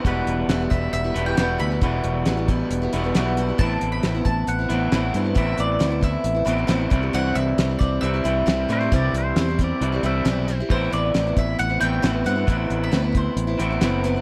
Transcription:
<<
  \new Staff \with { instrumentName = "Mandolin" } { \time 4/4 \key a \dorian \tempo 4 = 135 r4 b'8 e''8 e''8. g''16 g''8 b''8~ | b''8 r2. r8 | a''8. b''8. a''8 fis''2 | e''8 d''4 e''2 r8 |
fis''8 e''4 d''8 e''2~ | e''2. r4 | c''8 d''4 e''8 fis''8 g''4 fis''8~ | fis''8. e''8. c''2 r8 | }
  \new Staff \with { instrumentName = "Pedal steel guitar" } { \time 4/4 \key a \dorian b'8. r2. r16 | r1 | r1 | r1 |
r2. r8 c''8 | d''8 c''8 c''8 d''4 e''4~ e''16 r16 | r1 | r1 | }
  \new Staff \with { instrumentName = "Steel-string acoustic guitar" } { \time 4/4 \key a \dorian <e, b, e g b e'>4 <e, b, e g b e'>16 <e g b e'>16 <e g b e'>8. <e g b e'>16 <e g b e'>16 <e g b e'>16 <e, b, e g b e'>8 <e g b e'>16 <e g b e'>16 | <e, b, e g b e'>4 <e, b, e g b e'>16 <e g b e'>16 <e g b e'>8. <e g b e'>16 <e g b e'>16 <e g b e'>16 <e, b, e g b e'>8 <e g b e'>16 <e g b e'>16 | <a, e e'>4 <a, e b c' e'>16 <b c' e'>16 <e e'>8. <b c' e'>16 <e b c' e'>8 <a, e b c' e'>8 <e b c' e'>16 <b c' e'>16 | <a, e e'>4 <a, e b c' e'>16 <b c' e'>16 <e e'>8. <b c' e'>16 <e b c' e'>16 <b c' e'>16 <a, e b c' e'>16 <b c' e'>16 <e g c' e'>16 <g c' e'>16 |
<c e g c' e'>4 <c e g c' e'>16 <g c' e'>16 <e g c' e'>8. <g c' e'>16 <e g c' e'>8 <c e g c' e'>8 <e g c' e'>16 <g c' e'>16 | <c e g c' e'>4 <c e g c' e'>16 <g c' e'>16 <e g c' e'>8. <g c' e'>16 <e g c' e'>8 <c e g c' e'>8 <e g c' e'>16 <g c' e'>16 | <a, e e'>4 <a, e b c' e'>16 <b c' e'>16 <e e'>8. <b c' e'>16 <e b c' e'>8 <a, e b c' e'>16 <b c' e'>16 <e b c' e'>16 <b c' e'>16 | <a, e e'>4 <a, e b c' e'>16 <b c' e'>16 <e e'>8. <b c' e'>16 <e b c' e'>16 <b c' e'>16 <a, e b c' e'>8 <e b c' e'>16 <b c' e'>16 | }
  \new Staff \with { instrumentName = "Clean electric guitar" } { \clef bass \time 4/4 \key a \dorian <e, b, e g b e'>2~ <e, b, e g b e'>8 <e, b, e g b e'>8 <e, b, e g b e'>4 | <e, b, e g b e'>2~ <e, b, e g b e'>8 <e, b, e g b e'>8 <e, b, e g b e'>4 | <a, e b c' e'>2~ <a, e b c' e'>8 <a, e b c' e'>8 <a, e b c' e'>4 | <a, e b c' e'>2~ <a, e b c' e'>8 <a, e b c' e'>8 <a, e b c' e'>8 <c e g c' e'>8~ |
<c e g c' e'>2 <c e g c' e'>8 <c e g c' e'>4 <c e g c' e'>8~ | <c e g c' e'>2 <c e g c' e'>8 <c e g c' e'>4 r8 | <a, e b c' e'>2~ <a, e b c' e'>8 <a, e b c' e'>8 <a, e b c' e'>4 | <a, e b c' e'>2~ <a, e b c' e'>8 <a, e b c' e'>8 <a, e b c' e'>4 | }
  \new Staff \with { instrumentName = "Fingered electric bass" } { \clef bass \time 4/4 \key a \dorian e,,8 e,,8 e,,8 e,,8 e,,8 e,,8 e,,8 d,8 | e,,8 e,,8 a,,4 e,,8 e,,8 b,,4 | a,,8 a,,8 a,,8 a,,8 a,,8 a,,8 a,,8 g,8 | a,,8 a,,8 d,4 a,,8 a,,8 a,,8 c,8 |
c,8 c,8 c,8 c,8 c,8 c,8 c,8 a,8 | c,8 c,8 e,4 c,8 c,8 b,,4 | a,,8 a,,8 a,,8 a,,8 a,,8 a,,8 a,,8 g,8 | a,,8 a,,8 d,4 a,,8 a,,8 fis,,4 | }
  \new DrumStaff \with { instrumentName = "Drums" } \drummode { \time 4/4 <hh bd>8 hh8 <hh sn>8 <hh bd>8 hh8 hh8 <hh sn>8 hh8 | <hh bd>8 hh8 <hh sn>8 <hh bd>8 hh8 hh8 <hh sn>8 hh8 | <hh bd>8 hh8 <hh sn>8 <hh bd>8 hh8 hh8 <hh sn>8 hh8 | <hh bd>8 hh8 <hh sn>8 <hh bd>8 hh8 hh8 <hh sn>8 <hh bd>8 |
hh8 hh8 <hh sn>8 <hh bd>8 hh8 hh8 <hh sn>8 hh8 | <hh bd>8 hh8 <hh sn>8 <hh bd>8 hh8 hh8 <hh sn>8 hh8 | <cymc bd>8 hh8 <hh sn>8 <hh bd>8 hh8 hh8 <hh sn>8 hh8 | <hh bd>8 hh8 <hh sn>8 <hh bd>8 hh8 hh8 <hh sn>8 hh8 | }
>>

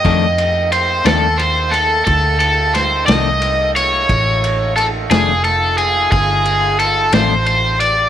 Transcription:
<<
  \new Staff \with { instrumentName = "Overdriven electric guitar" } { \time 12/8 \key f \mixolydian \tempo 4. = 59 ees''4 c''8 a'8 c''8 a'8 a'8 a'8 c''8 ees''4 des''8~ | des''4 a'8 aes'8 a'8 aes'8 aes'4 a'8 c''8 c''8 d''8 | }
  \new Staff \with { instrumentName = "Saxophone section" } { \time 12/8 \key f \mixolydian << { g''1. | f'1. | } \\ { <a bes ees'>1.~ | <a bes ees'>1. | } >> }
  \new Staff \with { instrumentName = "Clean electric guitar" } { \clef bass \time 12/8 \key f \mixolydian <f, ees a d'>8 r4 <f, ees a d'>8 r2 r8 <f, ees a d'>8 r4 | r4. <f, ees a d'>8 r2 r8 <f, ees a d'>8 r4 | }
  \new Staff \with { instrumentName = "Fingered electric bass" } { \clef bass \time 12/8 \key f \mixolydian f,4. ees,4. d,4. c,4. | a,,4. f,,4. g,,4. a,,4. | }
  \new DrumStaff \with { instrumentName = "Drums" } \drummode { \time 12/8 <bd cymr>8 cymr8 cymr8 <cymr sn>8 cymr8 cymr8 <bd cymr>8 cymr8 <cymr sn>8 <cymr sn>8 cymr8 cymr8 | <bd cymr>8 cymr8 cymr8 <cymr sn>8 cymr8 cymr8 <bd cymr>8 cymr8 cymr8 <cymr sn>8 cymr8 cymr8 | }
>>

